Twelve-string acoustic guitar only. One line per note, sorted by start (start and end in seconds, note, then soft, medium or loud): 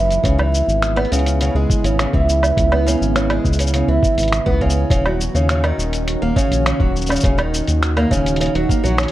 0.00 0.24 E3 medium
0.24 0.37 C#3 medium
0.39 0.96 E3 medium
0.96 1.10 B3 loud
1.12 1.39 C#3 loud
1.41 1.54 C#3 loud
1.56 1.83 G#3 medium
1.84 1.98 C#3 medium
1.99 2.12 C#3 medium
2.14 2.71 E3 medium
2.72 2.85 B3 loud
2.86 3.14 C#3 loud
3.15 3.29 C#3 loud
3.30 3.58 G#3 medium
3.59 3.72 C#3 medium
3.74 3.87 C#3 medium
3.88 4.45 E3 medium
4.46 4.59 B3 loud
4.61 4.89 C#3 loud
4.90 5.03 C#3 loud
5.06 5.33 F#3 medium
5.35 5.48 C#3 medium
5.50 5.62 C#3 medium
5.64 6.20 D#3 medium
6.22 6.35 A#3 loud
6.36 6.64 C#3 loud
6.66 6.79 C#3 loud
6.80 7.08 F#3 medium
7.09 7.23 C#3 medium
7.24 7.37 C#3 medium
7.38 7.95 D#3 medium
7.97 8.10 A#3 loud
8.11 8.38 C#3 loud
8.40 8.53 C#3 loud
8.55 8.68 F#3 medium
8.69 8.82 A#3 medium
8.84 8.97 F#3 loud
8.98 9.11 C#4 medium